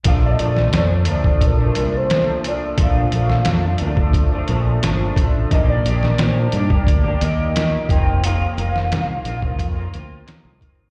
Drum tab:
HH |x-x-x-x-x-x-x-x-|x-x-x-x-x-x-x-x-|x-x-x-x-x-x-x-x-|x-x-x-x-x-x-x-x-|
SD |---oo-------o---|---oo-------o---|---oo-------o---|---oo-------o---|
BD |o------oo-------|o------oo-----o-|o------oo-----o-|-------oo-----o-|